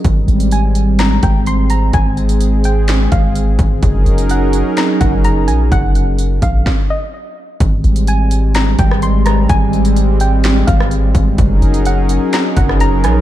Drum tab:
HH |x-xxx-x-x-x-x-x-|x-xxx-x-x-x-x-x-|x-xxx-x-x-x-x-x-|x-x-x-x---------|
SD |--------o-------|--------o-------|--------o-------|--------o-------|
BD |o---------o-----|o---------o---o-|o---------o-----|o-----o-o-------|

HH |x-xxx-x-x-x-x-x-|x-xxx-x-x-x-x-x-|x-xxx-x-x-x-x-x-|
SD |--------o--r--r-|--------o--r----|--------o--r--r-|
BD |o---------o-----|o---------o---o-|o---------o-----|